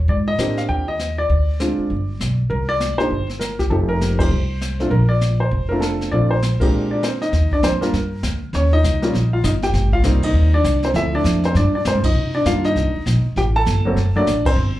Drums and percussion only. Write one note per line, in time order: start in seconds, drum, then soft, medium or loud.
0.08 brush sweep soft
0.08 kick soft
0.39 snare medium
0.39 hi-hat pedal medium
0.57 snare soft
0.69 brush sweep soft
0.69 kick soft
0.99 snare medium
0.99 hi-hat pedal medium
1.30 brush sweep soft
1.30 kick soft
1.60 snare medium
1.60 hi-hat pedal medium
1.90 brush sweep soft
1.90 kick soft
2.21 snare medium
2.21 hi-hat pedal medium
2.50 brush sweep soft
2.50 kick soft
2.80 snare medium
2.80 hi-hat pedal medium
3.00 snare soft
3.11 brush sweep soft
3.11 kick soft
3.29 snare soft
3.41 snare medium
3.41 hi-hat pedal medium
3.59 kick soft
3.59 snare soft
3.71 brush sweep soft
3.71 kick soft
4.01 snare medium
4.01 hi-hat pedal soft
4.20 kick medium
4.20 ride medium
4.31 brush sweep soft
4.61 snare medium
4.61 hi-hat pedal medium
4.80 snare soft
4.91 brush sweep soft
4.91 kick soft
5.21 snare medium
5.21 hi-hat pedal medium
5.51 brush sweep soft
5.51 kick soft
5.82 snare medium
5.82 hi-hat pedal medium
6.01 snare soft
6.12 brush sweep soft
6.12 kick soft
6.43 snare medium
6.43 hi-hat pedal soft
6.61 kick medium
6.61 ride medium
6.72 brush sweep soft
7.03 snare medium
7.03 hi-hat pedal medium
7.22 snare soft
7.33 brush sweep soft
7.33 kick soft
7.33 snare soft
7.52 kick soft
7.63 kick soft
7.63 snare medium
7.63 hi-hat pedal medium
7.82 snare soft
7.93 brush sweep soft
7.93 kick soft
7.93 snare soft
8.23 kick soft
8.23 snare medium
8.23 hi-hat pedal medium
8.53 brush sweep soft
8.53 kick soft
8.53 snare soft
8.84 kick soft
8.84 snare medium
8.84 hi-hat pedal medium
9.02 snare soft
9.14 brush sweep soft
9.14 kick soft
9.14 snare soft
9.44 kick soft
9.44 snare medium
9.44 hi-hat pedal medium
9.62 snare soft
9.74 brush sweep soft
9.74 kick soft
9.74 snare soft
9.92 kick medium
10.04 snare medium
10.04 hi-hat pedal medium
10.22 kick medium
10.22 ride medium
10.34 brush sweep soft
10.64 kick soft
10.64 snare medium
10.64 hi-hat pedal medium
10.83 snare soft
10.94 brush sweep soft
10.94 kick soft
10.94 snare soft
11.25 kick soft
11.25 snare medium
11.25 hi-hat pedal medium
11.44 snare soft
11.55 brush sweep soft
11.55 kick soft
11.55 snare soft
11.85 kick soft
11.85 snare medium
11.85 hi-hat pedal medium
12.04 kick medium
12.04 ride medium
12.15 brush sweep soft
12.46 kick soft
12.46 snare medium
12.46 hi-hat pedal medium
12.64 snare soft
12.76 brush sweep soft
12.76 kick soft
12.76 snare soft
13.06 kick soft
13.06 snare medium
13.06 hi-hat pedal medium
13.36 brush sweep soft
13.36 kick soft
13.36 snare soft
13.66 kick soft
13.66 snare medium
13.66 hi-hat pedal medium
13.97 brush sweep soft
13.97 kick soft
13.97 snare soft
14.27 kick soft
14.27 snare medium
14.27 hi-hat pedal medium
14.45 kick medium
14.45 ride medium
14.57 brush sweep soft